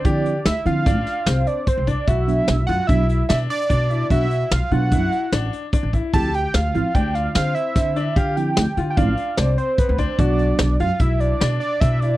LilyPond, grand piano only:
\new Staff \with { instrumentName = "Grand piano" } { \time 5/4 \key d \dorian \tempo 4 = 148 g'4 r8 f'8 d'4 c'4 c'8 d'8 | fis'4 r8 f'8 e'4 d'4 d'8 e'8 | fis'4 r8 f'8 e'4 d'4 d'8 e'8 | g'4 r8 f'8 d'4 c'4 c'8 d'8 |
g'4 r8 f'8 d'4 c'4 c'8 d'8 | fis'4 r8 f'8 e'4 d'4 d'8 e'8 | }